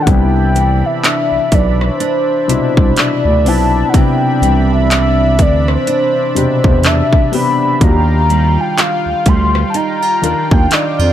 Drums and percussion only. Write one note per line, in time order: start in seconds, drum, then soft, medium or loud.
0.07 kick loud
0.07 closed hi-hat medium
0.56 closed hi-hat medium
1.04 clap loud
1.04 closed hi-hat medium
1.52 kick medium
1.52 closed hi-hat medium
1.81 cross-stick medium
2.00 closed hi-hat medium
2.49 closed hi-hat medium
2.77 kick loud
2.97 clap loud
2.97 closed hi-hat medium
3.46 open hi-hat medium
3.94 kick loud
3.94 closed hi-hat medium
4.43 closed hi-hat medium
4.91 clap loud
4.91 closed hi-hat medium
5.39 kick medium
5.39 closed hi-hat medium
5.68 cross-stick medium
5.87 closed hi-hat medium
6.36 closed hi-hat medium
6.64 kick loud
6.83 clap loud
6.83 closed hi-hat medium
7.13 kick medium
7.33 open hi-hat medium
7.81 kick loud
7.81 closed hi-hat medium
8.30 closed hi-hat medium
8.78 clap loud
8.78 closed hi-hat medium
9.26 kick medium
9.26 closed hi-hat medium
9.55 cross-stick medium
9.74 closed hi-hat medium
10.24 closed hi-hat medium
10.51 kick loud
10.71 clap loud
10.71 closed hi-hat medium